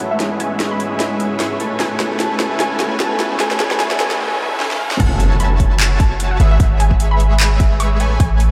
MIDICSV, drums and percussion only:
0, 0, Header, 1, 2, 480
1, 0, Start_track
1, 0, Key_signature, 3, "minor"
1, 0, Tempo, 400000
1, 240, Time_signature, 4, 2, 24, 8
1, 10212, End_track
2, 0, Start_track
2, 0, Title_t, "Drums"
2, 240, Note_on_c, 9, 38, 57
2, 240, Note_on_c, 9, 42, 81
2, 360, Note_off_c, 9, 38, 0
2, 360, Note_off_c, 9, 42, 0
2, 480, Note_on_c, 9, 42, 64
2, 600, Note_off_c, 9, 42, 0
2, 720, Note_on_c, 9, 38, 59
2, 720, Note_on_c, 9, 42, 76
2, 840, Note_off_c, 9, 38, 0
2, 840, Note_off_c, 9, 42, 0
2, 959, Note_on_c, 9, 42, 66
2, 1079, Note_off_c, 9, 42, 0
2, 1200, Note_on_c, 9, 38, 65
2, 1200, Note_on_c, 9, 42, 78
2, 1320, Note_off_c, 9, 38, 0
2, 1320, Note_off_c, 9, 42, 0
2, 1439, Note_on_c, 9, 42, 65
2, 1559, Note_off_c, 9, 42, 0
2, 1679, Note_on_c, 9, 38, 68
2, 1679, Note_on_c, 9, 42, 76
2, 1799, Note_off_c, 9, 38, 0
2, 1799, Note_off_c, 9, 42, 0
2, 1919, Note_on_c, 9, 42, 59
2, 2039, Note_off_c, 9, 42, 0
2, 2159, Note_on_c, 9, 38, 72
2, 2159, Note_on_c, 9, 42, 76
2, 2279, Note_off_c, 9, 38, 0
2, 2279, Note_off_c, 9, 42, 0
2, 2399, Note_on_c, 9, 38, 77
2, 2399, Note_on_c, 9, 42, 63
2, 2519, Note_off_c, 9, 38, 0
2, 2519, Note_off_c, 9, 42, 0
2, 2639, Note_on_c, 9, 38, 76
2, 2639, Note_on_c, 9, 42, 76
2, 2759, Note_off_c, 9, 38, 0
2, 2759, Note_off_c, 9, 42, 0
2, 2879, Note_on_c, 9, 38, 82
2, 2879, Note_on_c, 9, 42, 66
2, 2999, Note_off_c, 9, 38, 0
2, 2999, Note_off_c, 9, 42, 0
2, 3119, Note_on_c, 9, 38, 79
2, 3119, Note_on_c, 9, 42, 75
2, 3239, Note_off_c, 9, 38, 0
2, 3239, Note_off_c, 9, 42, 0
2, 3359, Note_on_c, 9, 38, 86
2, 3359, Note_on_c, 9, 42, 61
2, 3479, Note_off_c, 9, 38, 0
2, 3479, Note_off_c, 9, 42, 0
2, 3600, Note_on_c, 9, 38, 89
2, 3600, Note_on_c, 9, 42, 78
2, 3720, Note_off_c, 9, 38, 0
2, 3720, Note_off_c, 9, 42, 0
2, 3839, Note_on_c, 9, 38, 89
2, 3839, Note_on_c, 9, 42, 58
2, 3959, Note_off_c, 9, 38, 0
2, 3959, Note_off_c, 9, 42, 0
2, 4079, Note_on_c, 9, 38, 91
2, 4079, Note_on_c, 9, 42, 75
2, 4199, Note_off_c, 9, 38, 0
2, 4199, Note_off_c, 9, 42, 0
2, 4213, Note_on_c, 9, 38, 80
2, 4320, Note_off_c, 9, 38, 0
2, 4320, Note_on_c, 9, 38, 98
2, 4320, Note_on_c, 9, 42, 61
2, 4440, Note_off_c, 9, 38, 0
2, 4440, Note_off_c, 9, 42, 0
2, 4453, Note_on_c, 9, 38, 83
2, 4560, Note_off_c, 9, 38, 0
2, 4560, Note_on_c, 9, 38, 96
2, 4560, Note_on_c, 9, 42, 75
2, 4680, Note_off_c, 9, 38, 0
2, 4680, Note_off_c, 9, 42, 0
2, 4693, Note_on_c, 9, 38, 87
2, 4800, Note_off_c, 9, 38, 0
2, 4800, Note_on_c, 9, 38, 104
2, 4800, Note_on_c, 9, 42, 62
2, 4920, Note_off_c, 9, 38, 0
2, 4920, Note_off_c, 9, 42, 0
2, 4933, Note_on_c, 9, 38, 88
2, 5053, Note_off_c, 9, 38, 0
2, 5520, Note_on_c, 9, 38, 62
2, 5640, Note_off_c, 9, 38, 0
2, 5653, Note_on_c, 9, 38, 67
2, 5773, Note_off_c, 9, 38, 0
2, 5893, Note_on_c, 9, 38, 87
2, 5999, Note_on_c, 9, 36, 127
2, 5999, Note_on_c, 9, 42, 87
2, 5999, Note_on_c, 9, 49, 102
2, 6013, Note_off_c, 9, 38, 0
2, 6119, Note_off_c, 9, 36, 0
2, 6119, Note_off_c, 9, 42, 0
2, 6119, Note_off_c, 9, 49, 0
2, 6239, Note_on_c, 9, 42, 70
2, 6359, Note_off_c, 9, 42, 0
2, 6479, Note_on_c, 9, 42, 83
2, 6599, Note_off_c, 9, 42, 0
2, 6719, Note_on_c, 9, 36, 61
2, 6719, Note_on_c, 9, 42, 69
2, 6839, Note_off_c, 9, 36, 0
2, 6839, Note_off_c, 9, 42, 0
2, 6959, Note_on_c, 9, 39, 123
2, 6959, Note_on_c, 9, 42, 80
2, 7079, Note_off_c, 9, 39, 0
2, 7079, Note_off_c, 9, 42, 0
2, 7199, Note_on_c, 9, 36, 110
2, 7200, Note_on_c, 9, 42, 69
2, 7319, Note_off_c, 9, 36, 0
2, 7320, Note_off_c, 9, 42, 0
2, 7439, Note_on_c, 9, 42, 81
2, 7559, Note_off_c, 9, 42, 0
2, 7679, Note_on_c, 9, 42, 65
2, 7799, Note_off_c, 9, 42, 0
2, 7919, Note_on_c, 9, 36, 127
2, 7920, Note_on_c, 9, 42, 81
2, 8039, Note_off_c, 9, 36, 0
2, 8040, Note_off_c, 9, 42, 0
2, 8160, Note_on_c, 9, 42, 66
2, 8280, Note_off_c, 9, 42, 0
2, 8293, Note_on_c, 9, 36, 60
2, 8400, Note_on_c, 9, 42, 82
2, 8413, Note_off_c, 9, 36, 0
2, 8520, Note_off_c, 9, 42, 0
2, 8639, Note_on_c, 9, 42, 66
2, 8759, Note_off_c, 9, 42, 0
2, 8880, Note_on_c, 9, 39, 127
2, 8880, Note_on_c, 9, 42, 77
2, 9000, Note_off_c, 9, 39, 0
2, 9000, Note_off_c, 9, 42, 0
2, 9119, Note_on_c, 9, 36, 114
2, 9120, Note_on_c, 9, 42, 67
2, 9239, Note_off_c, 9, 36, 0
2, 9240, Note_off_c, 9, 42, 0
2, 9360, Note_on_c, 9, 42, 79
2, 9480, Note_off_c, 9, 42, 0
2, 9600, Note_on_c, 9, 42, 63
2, 9720, Note_off_c, 9, 42, 0
2, 9840, Note_on_c, 9, 36, 127
2, 9840, Note_on_c, 9, 42, 75
2, 9960, Note_off_c, 9, 36, 0
2, 9960, Note_off_c, 9, 42, 0
2, 10080, Note_on_c, 9, 42, 67
2, 10200, Note_off_c, 9, 42, 0
2, 10212, End_track
0, 0, End_of_file